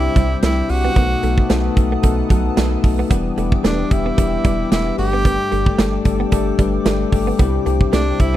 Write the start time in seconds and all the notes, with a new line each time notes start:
Already playing: C3 G3 C4 D4 E4 G4 C5 E5 G5 D6
0.15 C2 G3 C4 D4 E4 G4, kick, closed hi-hat
0.42 C2 G3 A3 C4 D4 E4 G4, snare, closed hi-hat, tambourine, cowbell
0.58 muted clean electric guitar stroke
0.69 C2 G3 C4 D4 E4 F#4 G4, open hi-hat
0.85 B3
0.96 B1 B2 A3 B3 D#4 F#4 A4 B4 F#5 A5 D#6, kick, closed hi-hat, cowbell
1.22 B1 A3 B3 D#4 F#4 A4, closed hi-hat
1.38 muted clean electric guitar stroke, kick
1.49 B1 A3 B3 D#4 F#4 A4, snare, closed hi-hat, tambourine, cowbell
1.65 muted clean electric guitar stroke
1.76 B1 A3 B3 D#4 F#4 A4, kick, closed hi-hat
1.92 B3
2.03 B1 A3 B3 D#4 F#4 A4, kick, closed hi-hat, cowbell
2.29 B1 F#3 A3 B3 D#4 F#4 A4, kick, closed hi-hat
2.56 B1 A3 B3 D#4 F#4 A4, snare, closed hi-hat, tambourine, cowbell
2.72 muted clean electric guitar stroke
2.83 B1 A3 B3 D#4 F#4 A4, kick, open hi-hat
2.99 B3
3.10 E1 E3 G3 B3 D4 E4 G4 E5 G5 D6, kick, closed hi-hat, cowbell
3.36 E1 G3 A3 B3 D4 E4 G4, closed hi-hat
3.52 muted clean electric guitar stroke, kick
3.63 E1 G3 A3 B3 D4 E4 G4, snare, closed hi-hat, tambourine, cowbell
3.79 muted clean electric guitar stroke
3.90 E1 G3 B3 D4 E4 G4, kick, closed hi-hat
4.06 B3
4.17 E1 G3 B3 D4 E4 G4, kick, closed hi-hat, cowbell
4.44 E1 G3 B3 D4 E4 G4, kick, closed hi-hat
4.71 E1 G3 A3 B3 D4 E4 G4, snare, closed hi-hat, tambourine, cowbell
4.87 muted clean electric guitar stroke
4.97 G1 G2 G3 A3 D4 G4 A4 D5, open hi-hat
5.13 B3
5.25 B3, kick, closed hi-hat, cowbell
5.51 G1 G3 A3 D4 G4 A4, closed hi-hat
5.66 muted clean electric guitar stroke, kick
5.77 G1 G3 A3 D4 G4 A4, snare, closed hi-hat, tambourine, cowbell
5.93 muted clean electric guitar stroke
6.04 G1 G3 A3 D4 G4 A4, kick, closed hi-hat
6.20 B3
6.31 G1 G3 A3 D4 G4 A4, kick, closed hi-hat, cowbell
6.58 G1 G3 A3 D4 G4 B4, kick, closed hi-hat
6.84 G1 G3 A3 D4 G4 A4, snare, closed hi-hat, tambourine, cowbell
7.00 muted clean electric guitar stroke
7.12 G1 G3 A3 D4 G4 A4, kick, open hi-hat
7.27 B3
7.38 C2 C3 G3 B3 C4 D4 E4 G4 C5 E5, kick, closed hi-hat, cowbell
7.65 C2 G3 A3 C4 D4 E4 G4, closed hi-hat
7.81 muted clean electric guitar stroke, kick
7.92 C2 G3 A3 C4 D4 E4 G4, snare, closed hi-hat, tambourine, cowbell
8.08 muted clean electric guitar stroke
8.19 C2 G3 C4 D4 E4 A4, kick, closed hi-hat